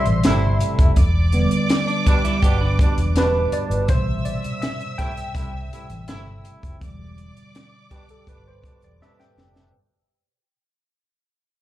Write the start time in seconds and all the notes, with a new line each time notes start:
Already playing: B2 C3 G3 C5 D5 E5 C6
0.06 A1, closed hi-hat
0.24 G1 C3 A3 E4, snare, closed hi-hat
0.61 closed hi-hat
0.79 F1, kick, closed hi-hat
0.96 E1 D5 D6, kick, closed hi-hat
1.32 D3 G3 B3, closed hi-hat
1.51 closed hi-hat
1.69 snare, closed hi-hat
1.87 D4, closed hi-hat
2.06 B2 G3 D4, kick, closed hi-hat
2.25 G3 E4, closed hi-hat
2.42 G1 B2 G3 B3 D4 G4, kick, closed hi-hat
2.61 D4 B4
2.79 B2 G3 D4, kick, closed hi-hat
2.97 E1, closed hi-hat
3.16 B2 G3 D4 B4, snare, closed hi-hat
3.52 D5, muted fingered electric bass stroke, closed hi-hat
3.70 G1, closed hi-hat
3.88 A1 B2 C3 G3 C5 E5 E6, kick, closed hi-hat
4.25 D5, closed hi-hat
4.44 muted fingered electric bass stroke, closed hi-hat
4.62 E5, snare, closed hi-hat
4.80 closed hi-hat
4.98 C3 A3 E4 G5, kick, closed hi-hat
5.17 closed hi-hat
5.34 C2 C3 A3 E4, kick, closed hi-hat
5.71 C3 A3 E4, closed hi-hat
5.90 A1, closed hi-hat
6.07 G1 C3 A3 E4, snare, closed hi-hat
6.45 closed hi-hat
6.63 F1, kick, closed hi-hat
6.80 E1 B2 D3 G3 D5 D6, kick, closed hi-hat
7.18 closed hi-hat
7.36 muted fingered electric bass stroke, closed hi-hat
7.55 snare, closed hi-hat
7.91 B2 G3 D4 G4, kick, closed hi-hat
8.09 A4, closed hi-hat
8.27 G1 B2 G3 D4 B4, kick, closed hi-hat
8.48 C5
8.63 B2 G3 D4, kick, closed hi-hat
8.82 E1 D5, closed hi-hat
9.01 B2 G3 D4 E5, snare
9.20 G5, snare
9.37 F1, snare
9.56 snare